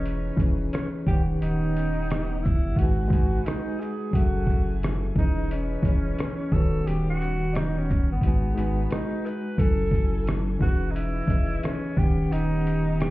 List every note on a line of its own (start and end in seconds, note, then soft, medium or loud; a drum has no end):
0.00 0.31 E1 medium
0.00 0.29 E3 medium
0.00 1.05 E3 medium
0.00 0.29 C#4 medium
0.00 0.44 C#4 medium
0.00 1.05 C#4 medium
0.00 1.05 D#4 medium
0.00 0.30 G#4 medium
0.00 0.31 B4 medium
0.00 1.05 B4 medium
0.00 0.32 D#5 medium
0.06 closed hi-hat medium
0.37 0.68 E1 loud
0.37 1.06 E3 medium
0.37 1.06 C#4 medium
0.37 1.07 G#4 medium
0.37 kick loud
0.37 closed hi-hat soft
0.37 shaker soft
0.41 1.08 B4 medium
0.41 1.08 C#5 medium
0.73 0.88 C#4 medium
0.73 cross-stick loud
0.73 closed hi-hat medium
1.06 1.37 D#1 loud
1.06 2.75 D#3 medium
1.06 2.21 D#3 medium
1.06 2.75 B3 medium
1.06 2.75 C#4 medium
1.06 2.22 D#4 medium
1.06 2.75 G4 medium
1.06 1.22 G4 loud
1.06 4.10 F#5 medium
1.06 2.23 F#5 medium
1.06 kick loud
1.06 shaker medium
1.10 2.23 G4 medium
1.10 2.24 B4 medium
1.10 2.24 C#5 medium
1.42 2.62 D#1 loud
1.42 2.35 D#4 loud
1.42 closed hi-hat medium
1.77 closed hi-hat soft
1.77 shaker soft
2.10 cross-stick loud
2.10 closed hi-hat medium
2.39 2.45 D#4 medium
2.43 2.79 E4 medium
2.43 kick loud
2.43 shaker medium
2.67 2.76 G1 medium
2.76 3.07 G#1 loud
2.76 3.07 G#3 medium
2.76 4.12 G#3 medium
2.76 4.12 D#4 medium
2.76 3.08 D#4 medium
2.76 3.47 F#4 medium
2.76 3.08 F#4 medium
2.76 4.12 B4 medium
2.76 kick medium
2.76 closed hi-hat medium
2.81 3.09 B4 medium
2.81 3.10 G#5 medium
3.08 3.41 G#1 medium
3.08 3.98 G#3 medium
3.08 3.99 D#4 medium
3.08 4.00 F#4 medium
3.08 kick loud
3.12 4.00 B4 medium
3.12 4.01 G#5 medium
3.12 closed hi-hat soft
3.12 shaker soft
3.46 3.81 D#4 medium
3.46 cross-stick loud
3.46 closed hi-hat medium
3.80 4.16 G#4 medium
3.80 shaker medium
4.11 5.12 F#1 loud
4.11 5.14 F#3 medium
4.11 5.14 A3 medium
4.11 5.15 C#4 medium
4.11 5.14 E4 medium
4.11 4.82 F#4 medium
4.11 5.16 G#4 medium
4.11 5.14 G#5 medium
4.11 kick loud
4.15 5.16 A4 medium
4.15 5.17 E5 medium
4.15 closed hi-hat medium
4.47 kick medium
4.47 shaker soft
4.83 cross-stick loud
4.83 closed hi-hat medium
5.15 5.76 E1 medium
5.15 5.75 E3 medium
5.15 6.51 E3 medium
5.15 8.20 C#4 medium
5.15 5.76 C#4 medium
5.15 6.51 D#4 medium
5.15 5.49 D#4 medium
5.15 5.77 G#4 medium
5.15 6.51 B4 medium
5.15 kick loud
5.15 shaker medium
5.20 5.77 B4 medium
5.20 5.78 D#5 medium
5.51 6.54 C#4 medium
5.51 closed hi-hat medium
5.82 6.14 E1 medium
5.82 6.51 E3 medium
5.82 6.52 C#4 medium
5.82 6.53 G#4 medium
5.82 kick loud
5.82 closed hi-hat soft
5.82 shaker soft
5.87 6.53 B4 medium
5.87 6.54 C#5 medium
6.19 cross-stick loud
6.19 closed hi-hat medium
6.50 6.83 D#1 loud
6.50 7.66 D#3 medium
6.50 8.21 D#3 medium
6.50 8.21 G3 medium
6.50 7.68 G3 medium
6.50 8.21 B3 medium
6.50 7.67 D#4 medium
6.50 9.56 F#4 medium
6.50 7.67 F#4 medium
6.50 6.88 A4 medium
6.50 kick loud
6.50 shaker medium
6.55 7.69 B4 medium
6.55 7.69 C#5 medium
6.87 8.07 D#1 loud
6.87 7.09 G4 medium
6.87 closed hi-hat medium
7.10 7.54 F#4 loud
7.21 shaker soft
7.53 7.57 D4 medium
7.53 7.79 D#4 loud
7.53 cross-stick loud
7.53 closed hi-hat medium
7.78 8.11 C#4 medium
7.90 kick loud
7.90 shaker medium
8.12 8.21 G1 medium
8.12 8.87 B3 medium
8.21 8.52 G#1 loud
8.21 8.52 G#3 medium
8.21 9.57 G#3 medium
8.21 9.57 D#4 medium
8.21 8.53 D#4 medium
8.21 8.54 F#4 medium
8.21 9.57 B4 medium
8.21 kick medium
8.21 closed hi-hat medium
8.26 8.54 B4 medium
8.26 8.55 G#5 medium
8.54 8.87 G#1 medium
8.54 9.44 G#3 medium
8.54 9.45 D#4 medium
8.54 9.46 F#4 medium
8.54 closed hi-hat medium
8.54 shaker soft
8.58 9.46 B4 medium
8.58 9.47 G#5 medium
8.91 9.27 D#4 loud
8.91 cross-stick loud
8.91 closed hi-hat medium
9.26 9.60 B4 loud
9.26 shaker medium
9.57 10.57 F#1 loud
9.57 10.60 F#3 medium
9.57 10.58 C#4 medium
9.57 10.60 E4 medium
9.57 10.61 E4 medium
9.57 10.27 A4 loud
9.57 10.60 A4 medium
9.57 10.60 G#5 medium
9.57 kick loud
9.57 closed hi-hat medium
9.61 10.63 A4 medium
9.61 10.62 G#5 medium
9.92 kick medium
9.92 shaker soft
10.27 cross-stick loud
10.27 closed hi-hat medium
10.58 11.22 E1 medium
10.58 11.19 E3 medium
10.58 11.96 E3 medium
10.58 11.20 C#4 medium
10.58 13.10 C#4 medium
10.58 11.21 D#4 medium
10.58 10.92 F#4 loud
10.58 11.96 B4 medium
10.58 11.96 D#5 medium
10.58 kick loud
10.62 11.21 G#4 medium
10.62 11.22 B4 medium
10.62 shaker medium
10.91 10.97 D#4 medium
10.95 11.65 E4 loud
10.95 closed hi-hat medium
11.27 11.59 E1 medium
11.27 11.96 E3 medium
11.27 11.97 C#4 medium
11.27 11.97 D#5 medium
11.27 kick loud
11.27 closed hi-hat soft
11.27 shaker medium
11.31 11.98 G#4 medium
11.31 11.99 B4 medium
11.63 12.00 C#4 loud
11.63 cross-stick loud
11.63 closed hi-hat medium
11.97 12.28 D#1 medium
11.97 13.10 D#3 medium
11.97 13.10 B3 medium
11.97 13.10 C#4 medium
11.97 13.10 G4 medium
11.97 12.33 G4 loud
11.97 13.10 F#5 medium
11.97 kick loud
11.97 shaker medium
12.02 13.10 G4 medium
12.02 13.10 B4 medium
12.32 13.10 D#1 loud
12.32 13.00 D#4 loud
12.32 closed hi-hat medium
12.67 closed hi-hat soft
12.67 shaker soft
13.00 13.10 G4 loud
13.00 cross-stick loud
13.00 closed hi-hat medium